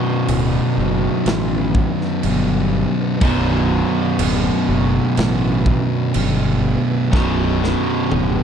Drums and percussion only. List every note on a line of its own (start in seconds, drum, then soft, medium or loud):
0.28 crash medium
1.26 snare loud
1.26 crash medium
1.75 kick loud
2.01 snare soft
2.23 crash medium
3.21 kick loud
3.21 crash medium
4.19 crash medium
5.17 snare loud
5.17 crash medium
5.66 kick loud
6.14 crash medium
7.13 kick loud
7.13 snare medium
7.64 snare medium
8.11 high tom medium